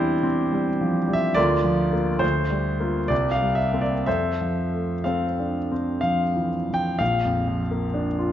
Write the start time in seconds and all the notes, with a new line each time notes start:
Already playing: E2 E3 G3 C4 D4 E4 G4 C5 D5 E5
0.23 C4
0.52 G3
0.81 F3
1.08 G3
1.13 E5
1.34 D2 F4 A#4 D5
1.64 F3
1.93 A#3 F4
2.19 D2 C5
2.50 G3
2.80 A#3 F4
3.08 C2 D5
3.31 F5
3.42 G3
3.55 E5
3.73 A#3 C4
3.81 D5
4.06 F2 A4 C5 E5
4.41 F3
4.74 A3
5.04 C4 A4 C5 F5
5.39 D4
5.71 C4
6.01 F3 F5
6.36 E3
6.70 F3
6.74 G5
6.99 A#1 F5
7.25 F2
7.47 F3
7.71 A#3
7.94 D4
8.19 F4